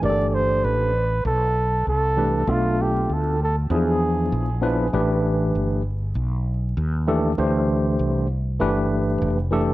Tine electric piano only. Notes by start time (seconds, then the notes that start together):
0.02 E3 A3 D4 G4 A#4
0.10 A4
2.17 E3 A3 D4 G4 B4
2.47 A3 B3 D4 F4 A4
3.70 F3 B3 D4 E4 G#4
4.61 F3 B3 D4 E4 B4
4.93 E3 A3 D4 G4 B4
7.07 E3 A3 D4 G4 A4
7.38 E3 A3 D4 G4 C5
8.59 E3 A3 D4 G4 B4
9.51 E3 A3 D4 G4 A4